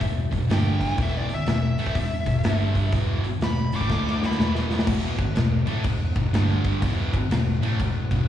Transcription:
0.00 picked electric bass E1, distorted electric guitar E2 B2, kick, open hi-hat
0.31 picked electric bass E1, distorted electric guitar E2 B2, kick, open hi-hat
0.48 picked electric bass G1, distorted electric guitar G2 D3 G3, snare, open hi-hat
0.53 lead electric guitar G5
0.81 kick, open hi-hat
0.96 picked electric bass E1, distorted electric guitar E2 B2 E3, kick, open hi-hat
1.03 lead electric guitar E5
1.17 lead electric guitar D5
1.28 muted distorted electric guitar stroke, muted picked electric bass stroke, open hi-hat
1.34 lead electric guitar E5
1.46 picked electric bass E1, distorted electric guitar E2 B2, lead electric guitar E5, snare, open hi-hat
1.77 picked electric bass A1, distorted electric guitar A2 E3 A3, open hi-hat
1.86 kick
1.95 picked electric bass E1, distorted electric guitar E2 B2, kick, open hi-hat
2.26 picked electric bass E1, distorted electric guitar E2 B2, kick, open hi-hat
2.44 picked electric bass G1, distorted electric guitar G2 D3 G3, snare, open hi-hat
2.75 kick, open hi-hat
2.92 picked electric bass E1, distorted electric guitar E2 B2 E3, kick, open hi-hat
3.22 muted picked electric bass stroke, muted distorted electric guitar stroke, open hi-hat
3.40 picked electric bass E1, distorted electric guitar E2 B2, lead electric guitar B5, snare, open hi-hat
3.72 picked electric bass A1, distorted electric guitar A2 E3 A3, lead electric guitar D6, open hi-hat
3.81 kick
3.89 picked electric bass D2, distorted electric guitar D3 A3 D4, kick, snare
4.07 snare
4.23 lead electric guitar B5, snare
4.31 snare
4.38 picked electric bass E1, distorted electric guitar E2 B2 E3, snare
4.55 snare
4.71 snare
4.79 snare
4.87 picked electric bass E1, distorted electric guitar E2 B2 E3, kick, crash
5.18 muted distorted electric guitar stroke, kick, crash
5.36 picked electric bass E1, distorted electric guitar E2 B2, snare, crash
5.66 picked electric bass A1, distorted electric guitar A2 E3 A3, crash
5.84 picked electric bass E1, distorted electric guitar E2 B2, kick, crash
6.15 picked electric bass E1, distorted electric guitar E2 B2, kick, crash
6.33 picked electric bass G1, distorted electric guitar G2 D3 G3, snare, crash
6.65 kick, crash
6.82 picked electric bass E1, distorted electric guitar E2 B2 E3, kick, crash
7.13 muted distorted electric guitar stroke, kick, crash
7.30 picked electric bass E1, distorted electric guitar E2 B2, snare, crash
7.62 picked electric bass A1, distorted electric guitar A2 E3 A3, crash
7.80 picked electric bass E1, distorted electric guitar E2 B2, kick, crash
8.11 picked electric bass E1, distorted electric guitar E2 B2, kick, crash

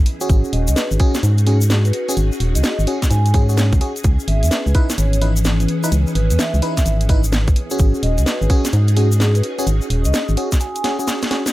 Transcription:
Already playing: ambient pad E3 C#4 B4 D#6, string machine B3 E4 G#4
0.06 open hi-hat
0.21 fm electric piano C#4 F#4 G#4, closed hi-hat, shaker
0.29 fm bass G#1, string machine C#4 D#4 F#4 G#4, kick, closed hi-hat, shaker
0.44 shaker
0.53 fm bass D#1, vibraphone D#5, open hi-hat
0.62 ambient pad F#4
0.68 fm bass C#2, vibraphone D#5, closed hi-hat, shaker
0.76 vibraphone B4, snare, shaker
0.91 fm bass G#1, shaker
1.00 fm electric piano C#4 F#4 G#4, kick, open hi-hat
1.15 snare, closed hi-hat, shaker
1.23 fm bass G#2, closed hi-hat, shaker
1.38 closed hi-hat, shaker
1.47 fm electric piano C#4 F#4 G#4, open hi-hat
1.61 ambient pad G#4, shaker
1.70 vibraphone G#4, snare, shaker
1.85 vibraphone B4, closed hi-hat, shaker
1.93 vibraphone B4, open hi-hat
2.08 fm electric piano C#4 F#4 G#4, closed hi-hat, shaker
2.17 fm bass G#1, closed hi-hat, shaker
2.32 shaker
2.40 fm bass D#1, open hi-hat
2.55 fm bass C#2, vibraphone D#5, closed hi-hat, shaker
2.63 vibraphone D#5, snare, shaker
2.79 fm bass G#1, shaker
2.87 fm electric piano C#4 F#4 G#4, open hi-hat
3.02 kick, snare, closed hi-hat, shaker
3.10 fm bass G#2, vibraphone G#5, closed hi-hat, shaker
3.26 vibraphone G#5, closed hi-hat, shaker
3.34 fm electric piano C#4 F#4 G#4, kick, open hi-hat
3.49 fm electric piano C#4 F#4 G#4, shaker
3.57 snare, shaker
3.73 fm bass C#2, kick, closed hi-hat, shaker
3.81 fm electric piano C#4 F#4 G#4, open hi-hat
3.96 closed hi-hat, shaker
4.04 fm bass C#2, string machine B3 C#4 E4, kick, closed hi-hat, shaker
4.19 shaker
4.28 fm bass G#1, vibraphone E5, open hi-hat
4.43 fm bass E2, ambient pad B4, vibraphone E5, closed hi-hat, shaker
4.51 vibraphone B4, snare, shaker
4.66 fm bass C#2, shaker
4.72 ambient pad E3, fm electric piano D#4 E4 B4, kick, open hi-hat
4.90 snare, closed hi-hat, shaker
4.98 fm bass G#1, vibraphone C#5, ambient pad D#6, closed hi-hat, shaker
5.13 closed hi-hat, shaker
5.22 fm electric piano D#4 E4 B4, open hi-hat
5.36 shaker
5.45 snare, shaker
5.60 closed hi-hat, shaker
5.68 open hi-hat
5.84 fm electric piano D#4 E4 B4, closed hi-hat, shaker
5.92 fm bass C#2, closed hi-hat, shaker
6.07 shaker
6.15 fm bass G#1, vibraphone B4, open hi-hat
6.30 fm bass E2, closed hi-hat, shaker
6.39 vibraphone E5, snare, shaker
6.54 fm bass C#2, shaker
6.62 fm electric piano D#4 E4 B4, open hi-hat
6.77 kick, snare, closed hi-hat, shaker
6.86 fm bass G#1, closed hi-hat, shaker
7.01 closed hi-hat, shaker
7.09 fm electric piano D#4 E4 B4, kick, open hi-hat
7.24 shaker
7.32 snare, shaker
7.48 kick, closed hi-hat, shaker
7.56 open hi-hat
7.71 fm electric piano C#4 F#4 G#4, closed hi-hat, shaker
7.79 fm bass G#1, string machine C#4 D#4 F#4 G#4, kick, closed hi-hat, shaker
7.95 shaker
8.03 fm bass D#1, vibraphone D#5, open hi-hat
8.18 fm bass C#2, vibraphone D#5, closed hi-hat, shaker
8.23 ambient pad F#4, vibraphone B4, snare, shaker
8.42 fm bass G#1, shaker
8.50 fm electric piano C#4 F#4 G#4, kick, open hi-hat
8.65 snare, closed hi-hat, shaker
8.73 fm bass G#2, closed hi-hat, shaker
8.88 closed hi-hat, shaker
8.97 fm electric piano C#4 F#4 G#4, open hi-hat
9.12 shaker
9.17 ambient pad G#4, vibraphone G#4, snare, shaker
9.35 vibraphone B4, closed hi-hat, shaker
9.43 vibraphone B4, open hi-hat
9.59 fm electric piano C#4 F#4 G#4, closed hi-hat, shaker
9.67 fm bass G#1, closed hi-hat, shaker
9.81 shaker
9.90 fm bass D#1, open hi-hat
10.05 fm bass C#2, vibraphone D#5, closed hi-hat, shaker
10.14 vibraphone D#5, snare, closed hi-hat, shaker
10.29 fm bass G#1, shaker
10.37 fm electric piano C#4 F#4 G#4, open hi-hat
10.52 kick, snare, closed hi-hat, shaker
10.60 vibraphone G#5, closed hi-hat, shaker
10.75 vibraphone G#5, closed hi-hat, shaker
10.84 fm electric piano C#4 F#4 G#4, snare, open hi-hat
10.99 fm electric piano C#4 F#4 G#4, shaker
11.08 snare, shaker
11.22 snare, closed hi-hat, shaker
11.31 fm electric piano C#4 F#4 G#4, snare, open hi-hat
11.46 snare, closed hi-hat, shaker

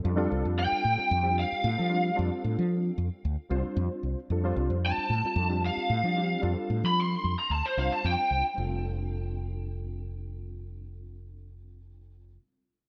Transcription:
0.03 fretless electric bass F2, reed electric piano G3 C4 D4 F4 A4
0.16 reed electric piano G3 C4 D4 F4 A4
0.32 fretless electric bass C2
0.45 fretless electric bass F2
0.59 lead electric guitar G5
0.72 muted fretless electric bass stroke
0.85 fretless electric bass A2
0.96 reed electric piano G3 C4 D4 F4 A4, muted fretless electric bass stroke
1.11 fretless electric bass F2
1.22 reed electric piano G3 C4 D4 F4 G4
1.40 lead electric guitar F5
1.52 muted fretless electric bass stroke
1.64 fretless electric bass A2
1.77 fretless electric bass F3, reed electric piano G3 C4 D4 F4 A4
1.88 reed electric piano G3 C4 D4 F4 G4
2.15 fretless electric bass F2, reed electric piano G3 C4 D4 F4 A4
2.44 fretless electric bass A2
2.59 fretless electric bass F3
2.98 fretless electric bass F2
3.25 fretless electric bass D2
3.49 fretless electric bass C2, reed electric piano G3 C4 D4 F4 C5
3.65 muted fretless electric bass stroke
3.77 fretless electric bass F2
4.03 fretless electric bass C2
4.30 fretless electric bass F2, reed electric piano G3 C4 D4 F4 A4
4.43 reed electric piano G3 C4 D4 F4 C5
4.56 fretless electric bass C2
4.70 fretless electric bass F2
4.86 lead electric guitar A5
4.98 muted fretless electric bass stroke
5.10 fretless electric bass A2
5.23 reed electric piano G3 C4 D4 F4 A4, muted fretless electric bass stroke
5.36 fretless electric bass F2
5.49 reed electric piano G3 C4 D4 F4 G4
5.66 lead electric guitar F5
5.77 muted fretless electric bass stroke
5.90 fretless electric bass A2
6.03 fretless electric bass F3, reed electric piano G3 C4 D4 F4 G4
6.16 reed electric piano G3 C4 D4 F4 G4
6.41 fretless electric bass F2, reed electric piano G3 C4 D4 F4 A4
6.70 fretless electric bass A2
6.84 fretless electric bass F3, lead electric guitar B5
7.00 lead electric guitar C6
7.24 fretless electric bass F2
7.39 lead electric guitar A#5
7.50 fretless electric bass D2, lead electric guitar A5
7.66 lead electric guitar C5
7.77 fretless electric bass C2, reed electric piano G3 C4 D4 F4 C5, lead electric guitar F5
7.92 lead electric guitar A5
8.04 fretless electric bass F2, lead electric guitar G5
8.31 fretless electric bass C2
8.54 reed electric piano G3 C4 D4
8.58 fretless electric bass F1, reed electric piano F4 A4

